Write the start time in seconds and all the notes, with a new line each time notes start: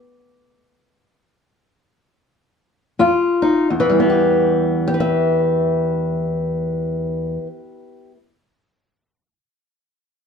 2.99 F2 F4
3.42 D#4
3.70 E2
3.80 E3
3.89 G3
4.00 B3
4.10 G4
4.88 G4
4.94 B4
5.00 E5